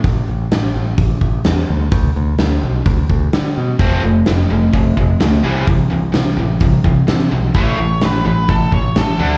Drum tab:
HH |o---o---o---o---|o---o---o---o---|o---o---o---o---|o---o---o---o---|
SD |----o-------o---|----o-------o---|----o-------oo--|----o-------oo--|
BD |o-------o-o-----|o-------o-o-----|o-------o-o-----|o-------o-o-----|

HH |o---o---o---o---|
SD |----o-------o---|
BD |o-------o-o-----|